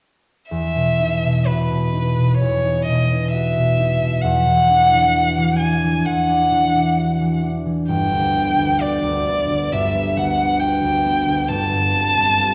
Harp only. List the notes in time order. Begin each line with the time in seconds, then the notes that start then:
0.51 E2
0.75 B2
1.00 D#4
1.24 B2
1.48 F#4
1.71 B2
1.93 D#4
2.17 B2
2.41 E2
2.65 D#4
2.88 B2
3.11 D#4
3.34 F#4
3.57 B2
3.79 D#4
4.02 B2
4.24 E2
4.47 E3
4.70 D4
4.93 E3
5.15 F#4
5.38 E3
5.60 D4
5.84 E3
6.06 E2
6.29 D4
6.51 E3
6.75 D4
6.98 F#4
7.20 E3
7.43 D4
7.66 E3
7.89 G1
8.12 D2
8.35 B3
8.58 D2
8.80 F#4
9.04 D2
9.27 B3
9.50 D2
9.73 G1
9.94 B3
10.17 D2
10.39 B3
10.61 F#4
10.84 D2
11.05 B3
11.28 D2
11.49 G1
11.73 G2
11.95 C4
12.17 G2
12.41 F4